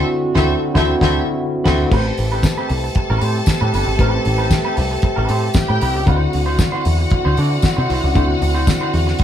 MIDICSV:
0, 0, Header, 1, 8, 480
1, 0, Start_track
1, 0, Tempo, 519931
1, 1769, Time_signature, 4, 2, 24, 8
1, 8529, End_track
2, 0, Start_track
2, 0, Title_t, "String section"
2, 0, Program_c, 0, 48
2, 328, Note_on_c, 0, 69, 99
2, 329, Note_on_c, 0, 60, 96
2, 331, Note_on_c, 0, 76, 99
2, 494, Note_off_c, 0, 60, 0
2, 494, Note_off_c, 0, 69, 0
2, 495, Note_off_c, 0, 76, 0
2, 700, Note_on_c, 0, 76, 96
2, 701, Note_on_c, 0, 60, 94
2, 701, Note_on_c, 0, 69, 98
2, 859, Note_off_c, 0, 69, 0
2, 859, Note_off_c, 0, 76, 0
2, 860, Note_off_c, 0, 60, 0
2, 942, Note_on_c, 0, 76, 103
2, 943, Note_on_c, 0, 60, 88
2, 943, Note_on_c, 0, 69, 98
2, 1100, Note_off_c, 0, 76, 0
2, 1101, Note_off_c, 0, 60, 0
2, 1101, Note_off_c, 0, 69, 0
2, 1528, Note_on_c, 0, 60, 90
2, 1529, Note_on_c, 0, 76, 81
2, 1531, Note_on_c, 0, 69, 86
2, 1694, Note_off_c, 0, 60, 0
2, 1694, Note_off_c, 0, 76, 0
2, 1696, Note_off_c, 0, 69, 0
2, 1768, Note_on_c, 0, 81, 93
2, 1770, Note_on_c, 0, 69, 87
2, 5089, Note_off_c, 0, 81, 0
2, 5090, Note_off_c, 0, 69, 0
2, 5122, Note_on_c, 0, 67, 91
2, 5126, Note_on_c, 0, 79, 104
2, 5594, Note_off_c, 0, 67, 0
2, 5596, Note_off_c, 0, 79, 0
2, 5607, Note_on_c, 0, 66, 89
2, 5608, Note_on_c, 0, 78, 92
2, 8529, Note_off_c, 0, 66, 0
2, 8529, Note_off_c, 0, 78, 0
2, 8529, End_track
3, 0, Start_track
3, 0, Title_t, "Clean electric guitar"
3, 0, Program_c, 1, 27
3, 325, Note_on_c, 1, 72, 100
3, 332, Note_on_c, 1, 66, 88
3, 339, Note_on_c, 1, 64, 100
3, 492, Note_off_c, 1, 72, 0
3, 496, Note_off_c, 1, 66, 0
3, 500, Note_off_c, 1, 64, 0
3, 690, Note_on_c, 1, 72, 93
3, 701, Note_on_c, 1, 66, 105
3, 705, Note_on_c, 1, 64, 89
3, 853, Note_off_c, 1, 72, 0
3, 859, Note_off_c, 1, 66, 0
3, 862, Note_off_c, 1, 64, 0
3, 936, Note_on_c, 1, 72, 82
3, 944, Note_on_c, 1, 66, 88
3, 953, Note_on_c, 1, 64, 96
3, 1097, Note_off_c, 1, 72, 0
3, 1101, Note_off_c, 1, 66, 0
3, 1106, Note_off_c, 1, 64, 0
3, 1518, Note_on_c, 1, 64, 99
3, 1529, Note_on_c, 1, 66, 102
3, 1535, Note_on_c, 1, 72, 99
3, 1688, Note_off_c, 1, 64, 0
3, 1694, Note_off_c, 1, 66, 0
3, 1698, Note_off_c, 1, 72, 0
3, 1766, Note_on_c, 1, 60, 86
3, 1775, Note_on_c, 1, 67, 104
3, 1782, Note_on_c, 1, 71, 105
3, 1884, Note_off_c, 1, 71, 0
3, 1893, Note_off_c, 1, 67, 0
3, 1962, Note_off_c, 1, 60, 0
3, 2138, Note_on_c, 1, 71, 65
3, 2149, Note_on_c, 1, 67, 54
3, 2156, Note_on_c, 1, 60, 49
3, 2243, Note_off_c, 1, 60, 0
3, 2248, Note_off_c, 1, 67, 0
3, 2255, Note_off_c, 1, 71, 0
3, 2378, Note_on_c, 1, 71, 93
3, 2387, Note_on_c, 1, 67, 83
3, 2393, Note_on_c, 1, 60, 78
3, 2485, Note_off_c, 1, 60, 0
3, 2491, Note_off_c, 1, 67, 0
3, 2494, Note_off_c, 1, 71, 0
3, 2861, Note_on_c, 1, 71, 87
3, 2871, Note_on_c, 1, 67, 87
3, 2873, Note_on_c, 1, 60, 74
3, 2959, Note_off_c, 1, 60, 0
3, 2968, Note_off_c, 1, 67, 0
3, 2970, Note_on_c, 1, 60, 59
3, 2979, Note_on_c, 1, 67, 57
3, 2984, Note_off_c, 1, 71, 0
3, 2988, Note_on_c, 1, 72, 62
3, 3099, Note_off_c, 1, 72, 0
3, 3102, Note_off_c, 1, 67, 0
3, 3129, Note_off_c, 1, 60, 0
3, 3331, Note_on_c, 1, 71, 68
3, 3342, Note_on_c, 1, 67, 70
3, 3349, Note_on_c, 1, 60, 59
3, 3434, Note_off_c, 1, 60, 0
3, 3442, Note_off_c, 1, 67, 0
3, 3445, Note_on_c, 1, 60, 82
3, 3451, Note_off_c, 1, 71, 0
3, 3453, Note_on_c, 1, 67, 90
3, 3462, Note_on_c, 1, 71, 88
3, 3561, Note_off_c, 1, 71, 0
3, 3570, Note_off_c, 1, 67, 0
3, 3641, Note_off_c, 1, 60, 0
3, 3684, Note_on_c, 1, 60, 106
3, 3693, Note_on_c, 1, 67, 100
3, 3699, Note_on_c, 1, 71, 105
3, 3803, Note_off_c, 1, 71, 0
3, 3813, Note_off_c, 1, 67, 0
3, 3880, Note_off_c, 1, 60, 0
3, 4044, Note_on_c, 1, 71, 56
3, 4053, Note_on_c, 1, 67, 55
3, 4061, Note_on_c, 1, 60, 52
3, 4147, Note_off_c, 1, 60, 0
3, 4154, Note_off_c, 1, 67, 0
3, 4158, Note_off_c, 1, 71, 0
3, 4290, Note_on_c, 1, 71, 92
3, 4299, Note_on_c, 1, 67, 80
3, 4308, Note_on_c, 1, 60, 79
3, 4390, Note_off_c, 1, 60, 0
3, 4393, Note_off_c, 1, 67, 0
3, 4398, Note_off_c, 1, 71, 0
3, 4765, Note_on_c, 1, 71, 69
3, 4775, Note_on_c, 1, 67, 80
3, 4781, Note_on_c, 1, 60, 67
3, 4872, Note_off_c, 1, 60, 0
3, 4877, Note_off_c, 1, 67, 0
3, 4883, Note_on_c, 1, 60, 71
3, 4889, Note_on_c, 1, 67, 76
3, 4894, Note_off_c, 1, 71, 0
3, 4898, Note_on_c, 1, 72, 70
3, 5010, Note_off_c, 1, 72, 0
3, 5014, Note_off_c, 1, 67, 0
3, 5045, Note_off_c, 1, 60, 0
3, 5248, Note_on_c, 1, 71, 73
3, 5259, Note_on_c, 1, 67, 70
3, 5263, Note_on_c, 1, 60, 50
3, 5349, Note_off_c, 1, 60, 0
3, 5359, Note_off_c, 1, 67, 0
3, 5360, Note_on_c, 1, 60, 81
3, 5366, Note_off_c, 1, 71, 0
3, 5370, Note_on_c, 1, 67, 80
3, 5377, Note_on_c, 1, 71, 99
3, 5476, Note_off_c, 1, 71, 0
3, 5488, Note_off_c, 1, 67, 0
3, 5558, Note_off_c, 1, 60, 0
3, 5594, Note_on_c, 1, 64, 92
3, 5603, Note_on_c, 1, 66, 102
3, 5610, Note_on_c, 1, 72, 102
3, 5717, Note_off_c, 1, 72, 0
3, 5727, Note_off_c, 1, 66, 0
3, 5795, Note_off_c, 1, 64, 0
3, 5964, Note_on_c, 1, 72, 74
3, 5975, Note_on_c, 1, 66, 68
3, 5979, Note_on_c, 1, 64, 55
3, 6069, Note_off_c, 1, 64, 0
3, 6075, Note_off_c, 1, 66, 0
3, 6080, Note_off_c, 1, 72, 0
3, 6205, Note_on_c, 1, 72, 103
3, 6214, Note_on_c, 1, 66, 91
3, 6223, Note_on_c, 1, 64, 72
3, 6309, Note_off_c, 1, 64, 0
3, 6315, Note_off_c, 1, 66, 0
3, 6320, Note_off_c, 1, 72, 0
3, 6692, Note_on_c, 1, 72, 82
3, 6699, Note_on_c, 1, 66, 73
3, 6705, Note_on_c, 1, 64, 70
3, 6789, Note_off_c, 1, 64, 0
3, 6797, Note_off_c, 1, 66, 0
3, 6801, Note_on_c, 1, 64, 68
3, 6808, Note_on_c, 1, 66, 66
3, 6813, Note_off_c, 1, 72, 0
3, 6817, Note_on_c, 1, 74, 75
3, 6924, Note_off_c, 1, 74, 0
3, 6927, Note_off_c, 1, 66, 0
3, 6964, Note_off_c, 1, 64, 0
3, 7170, Note_on_c, 1, 72, 66
3, 7180, Note_on_c, 1, 66, 60
3, 7184, Note_on_c, 1, 64, 59
3, 7274, Note_off_c, 1, 64, 0
3, 7280, Note_off_c, 1, 66, 0
3, 7285, Note_on_c, 1, 64, 84
3, 7287, Note_off_c, 1, 72, 0
3, 7291, Note_on_c, 1, 66, 100
3, 7298, Note_on_c, 1, 72, 96
3, 7400, Note_off_c, 1, 72, 0
3, 7409, Note_off_c, 1, 66, 0
3, 7481, Note_off_c, 1, 64, 0
3, 7522, Note_on_c, 1, 64, 98
3, 7532, Note_on_c, 1, 66, 99
3, 7535, Note_on_c, 1, 72, 94
3, 7644, Note_off_c, 1, 72, 0
3, 7656, Note_off_c, 1, 66, 0
3, 7719, Note_off_c, 1, 64, 0
3, 7890, Note_on_c, 1, 72, 69
3, 7898, Note_on_c, 1, 66, 61
3, 7905, Note_on_c, 1, 64, 62
3, 7996, Note_off_c, 1, 64, 0
3, 8002, Note_off_c, 1, 66, 0
3, 8004, Note_off_c, 1, 72, 0
3, 8132, Note_on_c, 1, 72, 86
3, 8141, Note_on_c, 1, 66, 89
3, 8148, Note_on_c, 1, 64, 76
3, 8236, Note_off_c, 1, 64, 0
3, 8239, Note_off_c, 1, 66, 0
3, 8247, Note_off_c, 1, 72, 0
3, 8529, End_track
4, 0, Start_track
4, 0, Title_t, "Tine electric piano"
4, 0, Program_c, 2, 4
4, 0, Control_c, 2, 64, 127
4, 0, Note_on_c, 2, 50, 101
4, 0, Note_on_c, 2, 60, 94
4, 0, Note_on_c, 2, 64, 89
4, 0, Note_on_c, 2, 66, 101
4, 318, Note_off_c, 2, 50, 0
4, 318, Note_on_c, 2, 50, 94
4, 326, Note_off_c, 2, 60, 0
4, 326, Note_on_c, 2, 60, 89
4, 333, Note_off_c, 2, 64, 0
4, 333, Note_on_c, 2, 64, 97
4, 345, Note_off_c, 2, 66, 0
4, 345, Note_on_c, 2, 66, 86
4, 488, Note_off_c, 2, 50, 0
4, 493, Note_off_c, 2, 60, 0
4, 497, Note_off_c, 2, 64, 0
4, 504, Note_off_c, 2, 66, 0
4, 680, Note_on_c, 2, 50, 95
4, 691, Note_on_c, 2, 60, 97
4, 698, Note_on_c, 2, 64, 104
4, 708, Note_on_c, 2, 66, 91
4, 848, Note_off_c, 2, 50, 0
4, 854, Note_off_c, 2, 60, 0
4, 858, Note_off_c, 2, 64, 0
4, 864, Note_off_c, 2, 66, 0
4, 922, Note_on_c, 2, 50, 88
4, 931, Note_on_c, 2, 60, 85
4, 938, Note_on_c, 2, 64, 97
4, 947, Note_on_c, 2, 66, 94
4, 1089, Note_off_c, 2, 50, 0
4, 1094, Note_off_c, 2, 60, 0
4, 1098, Note_off_c, 2, 64, 0
4, 1103, Note_off_c, 2, 66, 0
4, 1510, Note_on_c, 2, 50, 103
4, 1519, Note_on_c, 2, 60, 95
4, 1529, Note_on_c, 2, 64, 97
4, 1538, Note_on_c, 2, 66, 103
4, 1684, Note_off_c, 2, 50, 0
4, 1689, Note_off_c, 2, 60, 0
4, 1695, Note_off_c, 2, 64, 0
4, 1700, Note_off_c, 2, 66, 0
4, 1752, Note_on_c, 2, 57, 71
4, 1763, Note_on_c, 2, 67, 68
4, 1769, Note_on_c, 2, 71, 67
4, 1780, Control_c, 2, 64, 0
4, 1781, Note_on_c, 2, 72, 86
4, 1969, Control_c, 2, 64, 127
4, 3642, Note_off_c, 2, 57, 0
4, 3647, Note_off_c, 2, 67, 0
4, 3650, Note_off_c, 2, 71, 0
4, 3656, Note_off_c, 2, 72, 0
4, 3668, Note_on_c, 2, 57, 74
4, 3678, Note_on_c, 2, 67, 63
4, 3688, Note_on_c, 2, 71, 70
4, 3695, Note_on_c, 2, 72, 77
4, 5560, Note_off_c, 2, 57, 0
4, 5565, Note_off_c, 2, 67, 0
4, 5569, Note_off_c, 2, 71, 0
4, 5573, Note_off_c, 2, 72, 0
4, 5593, Note_on_c, 2, 50, 78
4, 5604, Note_on_c, 2, 60, 63
4, 5612, Note_on_c, 2, 64, 64
4, 5617, Control_c, 2, 64, 0
4, 5622, Note_on_c, 2, 66, 87
4, 5777, Control_c, 2, 64, 127
4, 7482, Note_off_c, 2, 50, 0
4, 7488, Note_off_c, 2, 60, 0
4, 7492, Note_off_c, 2, 64, 0
4, 7497, Note_off_c, 2, 66, 0
4, 7511, Note_on_c, 2, 50, 79
4, 7521, Note_on_c, 2, 60, 72
4, 7531, Note_on_c, 2, 64, 67
4, 7537, Note_on_c, 2, 66, 76
4, 8529, Note_off_c, 2, 50, 0
4, 8529, Note_off_c, 2, 60, 0
4, 8529, Note_off_c, 2, 64, 0
4, 8529, Note_off_c, 2, 66, 0
4, 8529, End_track
5, 0, Start_track
5, 0, Title_t, "French horn section"
5, 0, Program_c, 3, 60
5, 0, Note_on_c, 3, 50, 75
5, 0, Note_on_c, 3, 60, 74
5, 0, Note_on_c, 3, 64, 78
5, 0, Note_on_c, 3, 66, 85
5, 1614, Note_off_c, 3, 50, 0
5, 1614, Note_off_c, 3, 60, 0
5, 1614, Note_off_c, 3, 64, 0
5, 1614, Note_off_c, 3, 66, 0
5, 1771, Note_on_c, 3, 67, 93
5, 1772, Note_on_c, 3, 57, 83
5, 1777, Note_on_c, 3, 60, 75
5, 5570, Note_off_c, 3, 57, 0
5, 5570, Note_off_c, 3, 67, 0
5, 5600, Note_on_c, 3, 64, 82
5, 5604, Note_on_c, 3, 66, 91
5, 5605, Note_on_c, 3, 50, 85
5, 8529, Note_off_c, 3, 50, 0
5, 8529, Note_off_c, 3, 60, 0
5, 8529, Note_off_c, 3, 64, 0
5, 8529, Note_off_c, 3, 66, 0
5, 8529, End_track
6, 0, Start_track
6, 0, Title_t, "Picked electric bass"
6, 0, Program_c, 4, 34
6, 330, Note_on_c, 4, 38, 106
6, 495, Note_off_c, 4, 38, 0
6, 698, Note_on_c, 4, 38, 100
6, 858, Note_off_c, 4, 38, 0
6, 938, Note_on_c, 4, 38, 94
6, 1098, Note_off_c, 4, 38, 0
6, 1531, Note_on_c, 4, 38, 96
6, 1696, Note_off_c, 4, 38, 0
6, 1772, Note_on_c, 4, 33, 120
6, 1941, Note_off_c, 4, 33, 0
6, 2017, Note_on_c, 4, 33, 94
6, 2274, Note_off_c, 4, 33, 0
6, 2495, Note_on_c, 4, 36, 96
6, 2662, Note_off_c, 4, 36, 0
6, 2861, Note_on_c, 4, 33, 105
6, 2939, Note_off_c, 4, 33, 0
6, 2972, Note_on_c, 4, 45, 104
6, 3140, Note_off_c, 4, 45, 0
6, 3339, Note_on_c, 4, 45, 97
6, 3417, Note_off_c, 4, 45, 0
6, 3451, Note_on_c, 4, 31, 93
6, 3539, Note_off_c, 4, 31, 0
6, 3575, Note_on_c, 4, 32, 109
6, 3655, Note_off_c, 4, 32, 0
6, 3688, Note_on_c, 4, 33, 112
6, 3857, Note_off_c, 4, 33, 0
6, 3932, Note_on_c, 4, 33, 105
6, 4190, Note_off_c, 4, 33, 0
6, 4411, Note_on_c, 4, 36, 110
6, 4579, Note_off_c, 4, 36, 0
6, 4781, Note_on_c, 4, 33, 103
6, 4858, Note_off_c, 4, 33, 0
6, 4891, Note_on_c, 4, 45, 99
6, 5059, Note_off_c, 4, 45, 0
6, 5259, Note_on_c, 4, 45, 92
6, 5337, Note_off_c, 4, 45, 0
6, 5372, Note_on_c, 4, 36, 102
6, 5500, Note_off_c, 4, 36, 0
6, 5500, Note_on_c, 4, 37, 111
6, 5577, Note_off_c, 4, 37, 0
6, 5608, Note_on_c, 4, 38, 113
6, 5777, Note_off_c, 4, 38, 0
6, 5857, Note_on_c, 4, 38, 91
6, 6113, Note_off_c, 4, 38, 0
6, 6334, Note_on_c, 4, 40, 102
6, 6501, Note_off_c, 4, 40, 0
6, 6699, Note_on_c, 4, 38, 108
6, 6777, Note_off_c, 4, 38, 0
6, 6816, Note_on_c, 4, 50, 112
6, 6982, Note_off_c, 4, 50, 0
6, 7183, Note_on_c, 4, 48, 92
6, 7259, Note_off_c, 4, 48, 0
6, 7296, Note_on_c, 4, 36, 86
6, 7382, Note_off_c, 4, 36, 0
6, 7420, Note_on_c, 4, 37, 93
6, 7498, Note_off_c, 4, 37, 0
6, 7533, Note_on_c, 4, 38, 118
6, 7700, Note_off_c, 4, 38, 0
6, 7773, Note_on_c, 4, 38, 104
6, 8030, Note_off_c, 4, 38, 0
6, 8252, Note_on_c, 4, 40, 94
6, 8420, Note_off_c, 4, 40, 0
6, 8529, End_track
7, 0, Start_track
7, 0, Title_t, "Muted clean electric guitar strokes"
7, 1895, Note_on_c, 9, 29, 45
7, 1987, Note_off_c, 9, 29, 0
7, 2015, Note_on_c, 9, 29, 38
7, 2108, Note_off_c, 9, 29, 0
7, 2255, Note_on_c, 9, 29, 52
7, 2347, Note_off_c, 9, 29, 0
7, 2496, Note_on_c, 9, 29, 51
7, 2588, Note_off_c, 9, 29, 0
7, 2622, Note_on_c, 9, 29, 48
7, 2714, Note_off_c, 9, 29, 0
7, 2735, Note_on_c, 9, 29, 47
7, 2827, Note_off_c, 9, 29, 0
7, 3102, Note_on_c, 9, 29, 55
7, 3195, Note_off_c, 9, 29, 0
7, 3211, Note_on_c, 9, 29, 48
7, 3303, Note_off_c, 9, 29, 0
7, 3572, Note_on_c, 9, 29, 52
7, 3665, Note_off_c, 9, 29, 0
7, 3814, Note_on_c, 9, 29, 47
7, 3906, Note_off_c, 9, 29, 0
7, 3925, Note_on_c, 9, 29, 45
7, 4017, Note_off_c, 9, 29, 0
7, 4158, Note_on_c, 9, 29, 44
7, 4251, Note_off_c, 9, 29, 0
7, 4401, Note_on_c, 9, 29, 51
7, 4493, Note_off_c, 9, 29, 0
7, 4533, Note_on_c, 9, 29, 47
7, 4626, Note_off_c, 9, 29, 0
7, 4643, Note_on_c, 9, 29, 44
7, 4735, Note_off_c, 9, 29, 0
7, 5013, Note_on_c, 9, 29, 40
7, 5106, Note_off_c, 9, 29, 0
7, 5119, Note_on_c, 9, 29, 45
7, 5211, Note_off_c, 9, 29, 0
7, 5487, Note_on_c, 9, 29, 53
7, 5579, Note_off_c, 9, 29, 0
7, 5728, Note_on_c, 9, 29, 52
7, 5821, Note_off_c, 9, 29, 0
7, 5835, Note_on_c, 9, 29, 41
7, 5927, Note_off_c, 9, 29, 0
7, 6080, Note_on_c, 9, 29, 45
7, 6173, Note_off_c, 9, 29, 0
7, 6321, Note_on_c, 9, 29, 43
7, 6413, Note_off_c, 9, 29, 0
7, 6448, Note_on_c, 9, 29, 50
7, 6541, Note_off_c, 9, 29, 0
7, 6567, Note_on_c, 9, 29, 52
7, 6659, Note_off_c, 9, 29, 0
7, 6928, Note_on_c, 9, 29, 54
7, 7020, Note_off_c, 9, 29, 0
7, 7039, Note_on_c, 9, 29, 49
7, 7131, Note_off_c, 9, 29, 0
7, 7411, Note_on_c, 9, 29, 56
7, 7503, Note_off_c, 9, 29, 0
7, 7655, Note_on_c, 9, 29, 44
7, 7747, Note_off_c, 9, 29, 0
7, 7762, Note_on_c, 9, 29, 35
7, 7854, Note_off_c, 9, 29, 0
7, 8007, Note_on_c, 9, 29, 48
7, 8099, Note_off_c, 9, 29, 0
7, 8247, Note_on_c, 9, 29, 46
7, 8339, Note_off_c, 9, 29, 0
7, 8373, Note_on_c, 9, 29, 57
7, 8466, Note_off_c, 9, 29, 0
7, 8488, Note_on_c, 9, 29, 36
7, 8529, Note_off_c, 9, 29, 0
7, 8529, End_track
8, 0, Start_track
8, 0, Title_t, "Drums"
8, 328, Note_on_c, 9, 36, 97
8, 333, Note_on_c, 9, 38, 99
8, 420, Note_off_c, 9, 36, 0
8, 426, Note_off_c, 9, 38, 0
8, 694, Note_on_c, 9, 36, 106
8, 700, Note_on_c, 9, 38, 106
8, 787, Note_off_c, 9, 36, 0
8, 792, Note_off_c, 9, 38, 0
8, 935, Note_on_c, 9, 36, 108
8, 942, Note_on_c, 9, 38, 116
8, 1027, Note_off_c, 9, 36, 0
8, 1034, Note_off_c, 9, 38, 0
8, 1526, Note_on_c, 9, 49, 83
8, 1528, Note_on_c, 9, 36, 101
8, 1534, Note_on_c, 9, 38, 100
8, 1619, Note_off_c, 9, 49, 0
8, 1621, Note_off_c, 9, 36, 0
8, 1626, Note_off_c, 9, 38, 0
8, 1766, Note_on_c, 9, 49, 101
8, 1768, Note_on_c, 9, 36, 118
8, 1858, Note_off_c, 9, 49, 0
8, 1860, Note_off_c, 9, 36, 0
8, 2007, Note_on_c, 9, 46, 60
8, 2100, Note_off_c, 9, 46, 0
8, 2245, Note_on_c, 9, 36, 109
8, 2248, Note_on_c, 9, 54, 104
8, 2249, Note_on_c, 9, 42, 48
8, 2252, Note_on_c, 9, 38, 112
8, 2338, Note_off_c, 9, 36, 0
8, 2340, Note_off_c, 9, 54, 0
8, 2342, Note_off_c, 9, 42, 0
8, 2344, Note_off_c, 9, 38, 0
8, 2487, Note_on_c, 9, 46, 79
8, 2579, Note_off_c, 9, 46, 0
8, 2722, Note_on_c, 9, 42, 80
8, 2730, Note_on_c, 9, 36, 108
8, 2814, Note_off_c, 9, 42, 0
8, 2822, Note_off_c, 9, 36, 0
8, 2966, Note_on_c, 9, 46, 61
8, 3058, Note_off_c, 9, 46, 0
8, 3195, Note_on_c, 9, 54, 109
8, 3204, Note_on_c, 9, 36, 117
8, 3204, Note_on_c, 9, 42, 79
8, 3209, Note_on_c, 9, 38, 117
8, 3287, Note_off_c, 9, 54, 0
8, 3296, Note_off_c, 9, 36, 0
8, 3296, Note_off_c, 9, 42, 0
8, 3301, Note_off_c, 9, 38, 0
8, 3449, Note_on_c, 9, 46, 70
8, 3542, Note_off_c, 9, 46, 0
8, 3684, Note_on_c, 9, 36, 125
8, 3684, Note_on_c, 9, 42, 56
8, 3776, Note_off_c, 9, 36, 0
8, 3777, Note_off_c, 9, 42, 0
8, 3923, Note_on_c, 9, 46, 61
8, 4015, Note_off_c, 9, 46, 0
8, 4161, Note_on_c, 9, 36, 105
8, 4161, Note_on_c, 9, 54, 96
8, 4163, Note_on_c, 9, 42, 55
8, 4166, Note_on_c, 9, 38, 112
8, 4253, Note_off_c, 9, 36, 0
8, 4253, Note_off_c, 9, 54, 0
8, 4255, Note_off_c, 9, 42, 0
8, 4258, Note_off_c, 9, 38, 0
8, 4402, Note_on_c, 9, 46, 75
8, 4495, Note_off_c, 9, 46, 0
8, 4635, Note_on_c, 9, 42, 75
8, 4644, Note_on_c, 9, 36, 105
8, 4727, Note_off_c, 9, 42, 0
8, 4737, Note_off_c, 9, 36, 0
8, 4879, Note_on_c, 9, 46, 67
8, 4972, Note_off_c, 9, 46, 0
8, 5112, Note_on_c, 9, 54, 109
8, 5118, Note_on_c, 9, 42, 72
8, 5121, Note_on_c, 9, 36, 124
8, 5124, Note_on_c, 9, 38, 121
8, 5205, Note_off_c, 9, 54, 0
8, 5211, Note_off_c, 9, 42, 0
8, 5213, Note_off_c, 9, 36, 0
8, 5216, Note_off_c, 9, 38, 0
8, 5366, Note_on_c, 9, 46, 66
8, 5459, Note_off_c, 9, 46, 0
8, 5603, Note_on_c, 9, 36, 124
8, 5604, Note_on_c, 9, 42, 53
8, 5696, Note_off_c, 9, 36, 0
8, 5696, Note_off_c, 9, 42, 0
8, 5845, Note_on_c, 9, 46, 62
8, 5937, Note_off_c, 9, 46, 0
8, 6080, Note_on_c, 9, 54, 106
8, 6082, Note_on_c, 9, 36, 104
8, 6084, Note_on_c, 9, 42, 56
8, 6087, Note_on_c, 9, 38, 99
8, 6173, Note_off_c, 9, 54, 0
8, 6174, Note_off_c, 9, 36, 0
8, 6176, Note_off_c, 9, 42, 0
8, 6179, Note_off_c, 9, 38, 0
8, 6324, Note_on_c, 9, 46, 70
8, 6417, Note_off_c, 9, 46, 0
8, 6559, Note_on_c, 9, 42, 72
8, 6568, Note_on_c, 9, 36, 113
8, 6651, Note_off_c, 9, 42, 0
8, 6661, Note_off_c, 9, 36, 0
8, 6804, Note_on_c, 9, 46, 60
8, 6896, Note_off_c, 9, 46, 0
8, 7038, Note_on_c, 9, 54, 101
8, 7045, Note_on_c, 9, 36, 126
8, 7046, Note_on_c, 9, 42, 72
8, 7051, Note_on_c, 9, 38, 125
8, 7130, Note_off_c, 9, 54, 0
8, 7138, Note_off_c, 9, 36, 0
8, 7138, Note_off_c, 9, 42, 0
8, 7143, Note_off_c, 9, 38, 0
8, 7292, Note_on_c, 9, 46, 72
8, 7385, Note_off_c, 9, 46, 0
8, 7528, Note_on_c, 9, 36, 114
8, 7529, Note_on_c, 9, 42, 54
8, 7621, Note_off_c, 9, 36, 0
8, 7621, Note_off_c, 9, 42, 0
8, 7772, Note_on_c, 9, 46, 63
8, 7864, Note_off_c, 9, 46, 0
8, 8006, Note_on_c, 9, 54, 109
8, 8007, Note_on_c, 9, 36, 107
8, 8012, Note_on_c, 9, 42, 51
8, 8015, Note_on_c, 9, 38, 110
8, 8098, Note_off_c, 9, 54, 0
8, 8099, Note_off_c, 9, 36, 0
8, 8104, Note_off_c, 9, 42, 0
8, 8107, Note_off_c, 9, 38, 0
8, 8250, Note_on_c, 9, 46, 72
8, 8342, Note_off_c, 9, 46, 0
8, 8381, Note_on_c, 9, 38, 38
8, 8473, Note_off_c, 9, 38, 0
8, 8481, Note_on_c, 9, 42, 82
8, 8490, Note_on_c, 9, 36, 122
8, 8529, Note_off_c, 9, 36, 0
8, 8529, Note_off_c, 9, 42, 0
8, 8529, End_track
0, 0, End_of_file